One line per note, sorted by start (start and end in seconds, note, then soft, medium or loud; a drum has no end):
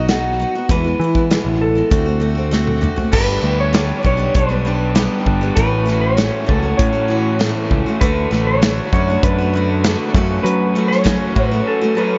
0.00 0.43 B1 medium
0.09 0.39 B2 medium
0.09 0.38 F#3 medium
0.09 0.40 B3 medium
0.09 0.40 D#4 medium
0.09 0.71 F#4 medium
0.09 0.41 F#4 medium
0.09 snare loud
0.09 closed hi-hat medium
0.39 0.54 F#3 medium
0.39 0.55 B3 medium
0.39 0.55 D#4 medium
0.39 0.54 F#4 medium
0.55 0.70 B3 soft
0.55 0.70 D#4 soft
0.55 0.70 F#4 soft
0.69 0.93 E2 medium
0.69 0.85 E2 medium
0.69 0.85 B2 medium
0.69 0.85 E3 medium
0.69 0.85 G#3 medium
0.69 0.85 B3 medium
0.69 0.83 E4 medium
0.69 1.64 B4 medium
0.69 kick loud
0.69 closed hi-hat medium
0.84 1.00 E3 soft
0.84 1.01 G#3 soft
0.84 1.00 B3 soft
0.84 0.99 E4 soft
1.00 1.36 E3 medium
1.00 1.15 E3 medium
1.00 1.16 G#3 medium
1.04 1.15 B3 medium
1.04 1.14 E4 medium
1.15 1.30 E3 soft
1.15 1.30 G#3 soft
1.15 1.31 B3 soft
1.15 1.30 E4 medium
1.15 kick medium
1.30 1.76 E2 medium
1.30 1.76 B2 medium
1.30 1.77 E3 medium
1.30 1.76 G#3 medium
1.30 1.75 B3 medium
1.30 1.74 E4 medium
1.30 snare loud
1.30 closed hi-hat medium
1.45 1.81 A1 medium
1.61 2.79 A4 medium
1.75 1.90 E3 soft
1.75 1.91 G#3 soft
1.75 1.91 B3 soft
1.75 1.91 E4 soft
1.90 2.87 D2 medium
1.90 2.06 D3 medium
1.90 2.07 A3 medium
1.90 2.06 C4 medium
1.90 2.04 F#4 medium
1.90 kick loud
1.90 closed hi-hat medium
2.06 2.20 A3 soft
2.06 2.21 C4 soft
2.06 2.21 F#4 medium
2.20 2.36 D3 medium
2.20 2.37 A3 medium
2.20 2.36 C4 medium
2.20 2.34 F#4 medium
2.35 2.50 A3 soft
2.35 2.51 C4 medium
2.35 2.51 F#4 medium
2.51 2.80 D3 medium
2.51 2.80 A3 medium
2.51 2.82 C4 medium
2.51 2.82 F#4 medium
2.51 snare medium
2.67 high tom medium
2.81 2.97 D3 medium
2.81 2.97 A3 medium
2.81 2.96 C4 medium
2.81 2.95 F#4 medium
2.81 mid tom medium
2.96 3.13 A3 soft
2.96 3.13 C4 soft
2.96 3.12 F#4 medium
2.96 floor tom medium
3.12 3.37 G1 loud
3.12 3.43 G2 medium
3.12 3.43 D3 medium
3.12 3.40 G3 medium
3.12 3.41 B3 medium
3.12 3.43 D4 medium
3.12 3.44 G4 medium
3.12 3.60 B4 medium
3.12 kick loud
3.12 crash loud
3.42 3.91 D2 medium
3.42 3.72 G3 medium
3.42 3.73 B3 medium
3.42 3.73 D4 medium
3.42 3.74 G4 medium
3.60 4.02 C#5 loud
3.73 4.04 G2 medium
3.73 4.04 D3 medium
3.73 4.02 G3 medium
3.73 4.03 B3 medium
3.73 4.04 D4 medium
3.73 4.05 G4 medium
3.73 snare loud
3.73 closed hi-hat medium
4.03 4.29 B1 medium
4.03 4.19 G3 medium
4.03 4.18 B3 medium
4.03 4.17 D4 medium
4.03 4.16 G4 medium
4.03 4.36 C#5 medium
4.03 kick medium
4.17 4.50 G3 soft
4.17 4.49 B3 soft
4.17 4.49 D4 soft
4.17 4.47 G4 medium
4.34 5.07 B1 medium
4.34 5.25 D4 medium
4.34 5.23 B4 medium
4.34 kick loud
4.34 closed hi-hat medium
4.49 4.64 G3 soft
4.49 4.65 B3 soft
4.49 4.65 D4 medium
4.49 4.65 G4 medium
4.65 4.94 G3 medium
4.65 4.95 B3 medium
4.65 4.95 D4 medium
4.65 4.96 G4 medium
4.95 5.41 G2 medium
4.95 5.41 D3 medium
4.95 5.41 G3 medium
4.95 5.42 B3 medium
4.95 5.41 D4 medium
4.95 5.40 G4 medium
4.95 snare loud
4.95 closed hi-hat medium
5.26 5.50 G1 loud
5.26 5.57 D4 medium
5.26 kick medium
5.41 5.56 G3 soft
5.41 5.57 B3 soft
5.41 5.57 D4 medium
5.41 5.57 G4 medium
5.56 6.29 A1 medium
5.56 5.87 A2 medium
5.56 5.84 E3 medium
5.56 5.86 A3 medium
5.56 5.87 C#4 medium
5.56 5.88 F#4 medium
5.56 6.01 B4 medium
5.56 kick loud
5.56 closed hi-hat medium
5.86 6.16 E3 medium
5.86 6.16 A3 medium
5.86 6.17 C#4 medium
5.86 6.17 F#4 medium
5.86 snare soft
6.01 6.44 C#5 loud
6.17 6.48 A2 medium
6.17 6.45 E3 medium
6.17 6.46 A3 medium
6.17 6.47 C#4 medium
6.17 6.48 F#4 medium
6.17 snare loud
6.17 closed hi-hat medium
6.46 6.73 C#2 medium
6.46 6.63 E3 medium
6.46 6.63 A3 medium
6.46 6.62 C#4 medium
6.46 6.61 F#4 medium
6.46 6.80 A4 medium
6.46 kick medium
6.62 6.94 A3 soft
6.62 6.92 C#4 soft
6.62 6.91 F#4 medium
6.77 7.51 A2 medium
6.77 7.69 C#4 medium
6.77 7.66 C#5 medium
6.77 kick loud
6.77 closed hi-hat medium
6.92 7.09 A3 soft
6.92 7.09 C#4 medium
6.92 7.09 F#4 medium
7.08 7.39 E3 medium
7.08 7.39 A3 medium
7.08 7.40 C#4 medium
7.08 7.40 F#4 medium
7.39 7.85 A2 medium
7.39 7.86 E3 medium
7.39 7.86 A3 medium
7.39 7.86 C#4 medium
7.39 7.85 F#4 medium
7.39 snare loud
7.39 closed hi-hat medium
7.70 7.83 C#2 loud
7.70 8.01 C#4 medium
7.70 kick medium
7.86 8.02 A3 soft
7.86 8.02 C#4 soft
7.86 8.01 F#4 medium
8.00 8.25 D2 loud
8.00 8.30 D3 medium
8.00 8.31 A3 medium
8.00 10.10 D4 medium
8.00 8.32 D4 medium
8.00 10.10 F#4 medium
8.00 8.33 F#4 medium
8.00 10.11 A4 medium
8.00 8.47 B4 medium
8.00 kick loud
8.00 closed hi-hat medium
8.31 8.79 A1 medium
8.31 8.60 D3 medium
8.31 8.61 A3 medium
8.31 8.62 D4 medium
8.31 8.63 F#4 medium
8.31 snare soft
8.47 8.93 C#5 loud
8.62 8.92 D3 medium
8.62 8.93 A3 medium
8.62 8.93 D4 medium
8.62 8.93 F#4 medium
8.62 snare loud
8.62 closed hi-hat medium
8.93 9.17 F#2 medium
8.93 9.08 D3 medium
8.93 9.08 A3 medium
8.93 9.09 D4 medium
8.93 9.07 F#4 medium
8.93 9.22 C#5 medium
8.93 kick medium
9.08 9.40 A3 soft
9.08 9.39 D4 soft
9.08 9.37 F#4 medium
9.23 9.95 F#2 medium
9.23 10.14 D4 medium
9.23 10.11 B4 medium
9.23 kick loud
9.23 closed hi-hat medium
9.38 9.54 A3 medium
9.38 9.54 D4 medium
9.38 9.53 F#4 medium
9.53 9.83 D3 medium
9.53 9.85 A3 medium
9.53 9.85 D4 medium
9.53 9.85 F#4 medium
9.84 10.14 D3 medium
9.84 10.15 A3 medium
9.84 10.15 D4 medium
9.84 10.16 F#4 medium
9.84 snare loud
9.84 closed hi-hat medium
10.13 10.38 F#2 loud
10.13 10.75 F#2 medium
10.13 10.76 C#3 medium
10.13 10.74 F#3 medium
10.13 12.18 C#4 medium
10.13 10.76 C#4 medium
10.13 12.18 F#4 medium
10.13 12.18 A4 medium
10.13 kick loud
10.17 10.75 A3 medium
10.17 10.77 F#4 loud
10.43 11.96 F#2 medium
10.43 11.16 F#3 loud
10.43 10.88 B4 medium
10.43 closed hi-hat medium
10.75 11.04 F#3 medium
10.75 11.03 A3 medium
10.75 11.04 C#4 medium
10.75 11.05 F#4 medium
10.88 11.46 C#5 loud
10.88 snare soft
11.04 11.35 F#2 medium
11.04 11.35 C#3 medium
11.04 11.34 F#3 medium
11.04 11.35 A3 medium
11.04 11.36 C#4 medium
11.04 11.36 F#4 medium
11.04 kick medium
11.04 snare loud
11.04 closed hi-hat medium
11.35 11.60 A2 medium
11.35 11.51 F#3 medium
11.35 11.51 A3 medium
11.35 11.52 C#4 medium
11.35 11.50 F#4 medium
11.35 kick medium
11.46 11.68 B4 loud
11.51 11.83 F#3 soft
11.51 11.82 A3 soft
11.51 11.82 C#4 soft
11.51 11.80 F#4 medium
11.65 12.18 C#4 medium
11.65 11.96 A4 medium
11.81 11.94 F#3 soft
11.81 11.96 A3 medium
11.81 11.97 C#4 medium
11.81 11.97 F#4 medium
11.95 12.18 F#3 medium
11.95 12.18 A3 medium
11.95 12.18 C#4 medium
11.95 12.18 F#4 medium
11.95 12.18 A4 medium
11.95 12.18 B4 medium